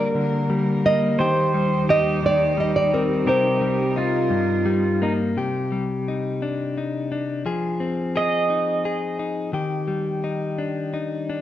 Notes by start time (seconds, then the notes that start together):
Already playing: D3 G3 A#3 A#4 D5
0.15 D3
0.50 G3
0.85 A#3 D#5
1.19 D#2 D#3 D#4 G4 C5
1.54 G3
1.89 D#4 G4 D#5
2.23 D#3 D5
2.57 G3 D#5
2.76 D5
2.94 C4 A#4
3.26 C3 C4 G4 A#4 C5
3.61 G3
3.96 D#4 F4
4.30 G2
4.66 G3
5.02 A#3 D#4
5.37 C3 G4
5.72 G3
6.08 D#4
6.42 D4
6.77 D#4
7.12 D4
7.46 F3 G#4
7.80 C4
8.16 G#4 D#5
8.50 D#4
8.85 G#4
9.19 D#4
9.53 D#3 G4
9.88 G3
10.24 D#4
10.58 D4
10.93 D#4
11.29 D4